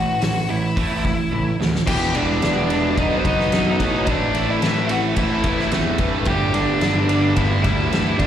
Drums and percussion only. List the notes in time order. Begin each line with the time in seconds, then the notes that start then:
0.21 snare, open hi-hat
0.77 kick, open hi-hat
1.05 kick, snare
1.33 high tom
1.61 snare
1.75 snare
1.87 kick, crash
2.15 ride
2.42 snare, ride
2.70 ride
2.97 kick, ride
3.25 kick, ride
3.40 snare
3.52 snare, ride
3.80 kick, snare, ride
4.07 kick, ride
4.34 ride
4.62 snare, ride
4.89 ride
5.16 kick, ride
5.44 kick, ride
5.59 snare
5.71 snare, ride
5.98 kick, ride
6.25 kick, ride
6.54 ride
6.81 snare, ride
7.09 ride
7.36 kick, ride
7.64 kick, ride
7.92 snare, ride
8.19 kick, ride